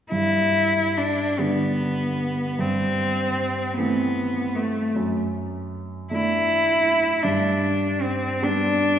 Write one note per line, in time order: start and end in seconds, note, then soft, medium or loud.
0.11 1.35 G2 soft
0.11 0.99 E4 medium
0.97 1.42 D4 soft
1.39 2.54 D3 soft
1.39 2.55 G3 soft
1.39 2.61 B3 medium
1.39 2.55 D4 soft
2.59 3.73 G2 soft
2.59 3.76 C4 medium
3.77 4.91 E3 soft
3.77 4.91 A3 soft
3.77 4.56 B3 medium
3.77 4.91 C4 soft
4.55 4.94 A3 soft
4.96 6.08 F#2 soft
6.11 7.21 A3 soft
6.11 7.21 D4 soft
6.11 7.24 E4 medium
7.22 8.38 G2 soft
7.22 8.03 D4 soft
8.02 8.44 C4 medium
8.42 8.99 G3 soft
8.42 8.99 B3 soft
8.42 8.99 D4 medium
8.42 8.99 D4 soft